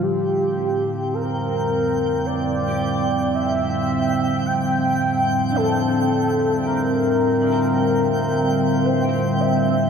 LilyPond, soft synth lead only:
\new Staff \with { instrumentName = "Soft synth lead" } { \time 3/4 \key c \mixolydian \tempo 4 = 54 g'4 bes'4 d''4 | e''4 g''4 a'4 | bes'2 c''8 e''8 | }